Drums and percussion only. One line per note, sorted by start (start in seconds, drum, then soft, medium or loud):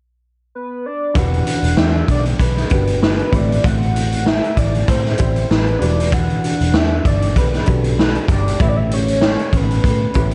1.15 kick loud
1.15 closed hi-hat medium
1.34 closed hi-hat soft
1.47 closed hi-hat medium
1.64 closed hi-hat soft
1.77 snare loud
2.08 kick medium
2.08 closed hi-hat medium
2.25 closed hi-hat soft
2.40 kick medium
2.40 closed hi-hat medium
2.57 snare soft
2.57 closed hi-hat soft
2.70 kick medium
2.70 closed hi-hat medium
2.87 closed hi-hat medium
3.03 snare loud
3.19 closed hi-hat soft
3.33 kick medium
3.33 closed hi-hat medium
3.52 closed hi-hat soft
3.64 kick loud
3.64 closed hi-hat medium
3.83 closed hi-hat soft
3.96 closed hi-hat medium
4.12 closed hi-hat soft
4.26 snare loud
4.44 closed hi-hat soft
4.57 kick medium
4.57 closed hi-hat medium
4.75 closed hi-hat soft
4.88 kick medium
4.88 closed hi-hat medium
5.05 snare soft
5.05 closed hi-hat soft
5.18 kick medium
5.18 closed hi-hat medium
5.36 closed hi-hat soft
5.51 snare loud
5.67 closed hi-hat soft
5.82 closed hi-hat medium
6.00 closed hi-hat medium
6.12 kick loud
6.12 closed hi-hat medium
6.30 closed hi-hat soft
6.44 closed hi-hat medium
6.61 closed hi-hat soft
6.74 snare loud
7.05 kick medium
7.05 closed hi-hat medium
7.22 closed hi-hat medium
7.36 kick medium
7.36 closed hi-hat medium
7.53 snare soft
7.53 closed hi-hat soft
7.66 kick medium
7.66 closed hi-hat medium
7.84 closed hi-hat medium
7.99 snare loud
8.15 closed hi-hat soft
8.28 kick medium
8.28 closed hi-hat medium
8.48 closed hi-hat medium
8.60 kick loud
8.60 closed hi-hat medium
8.91 closed hi-hat medium
9.08 closed hi-hat soft
9.21 snare loud
9.39 closed hi-hat soft
9.53 kick medium
9.53 closed hi-hat medium
9.71 closed hi-hat soft
9.84 kick medium
9.84 closed hi-hat medium
10.14 kick medium
10.14 closed hi-hat medium
10.31 closed hi-hat soft